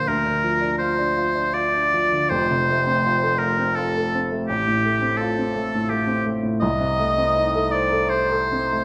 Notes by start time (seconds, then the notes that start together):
0.08 D2 A#4
0.25 D3
0.43 F3
0.61 D4
0.78 F4 C5
0.99 D4
1.17 F4
1.35 D4
1.54 F4 D5
1.74 D4
1.93 F3
2.12 D3
2.29 F1 F2 C5
2.51 C3
2.70 A3
2.87 C4
3.06 F4
3.23 A4
3.39 F4 A#4
3.59 C4
3.75 F4 A4
3.97 A4
4.15 C4
4.32 A3
4.48 A1 G4
4.67 A2
4.85 A3
5.02 C4
5.17 F4 A4
5.38 C4
5.56 A3
5.75 A2
5.90 A3 G4
6.07 C4
6.26 A3
6.43 A2
6.60 C2 D#5
6.80 C3
7.00 A3
7.18 C4
7.36 D#4
7.55 A4
7.72 C5 D5
7.92 A4
8.10 C5
8.32 A4
8.52 C4
8.73 A3